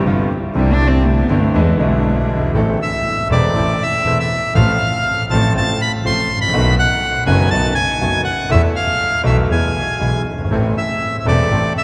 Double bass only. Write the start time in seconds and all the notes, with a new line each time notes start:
0.06 G1
0.54 C2
1.28 G1
1.54 E2
1.78 B1
2.54 A1
3.30 E1
3.56 A1
4.05 E1
4.56 A1
5.30 A1
5.55 A1
6.04 A1
6.30 A1
6.54 B1
7.27 F#1
7.52 B1
8.02 F#1
8.51 E2
9.26 B1
9.50 E2
10.00 B1
10.25 G1
10.50 A1
11.26 E1
11.51 A1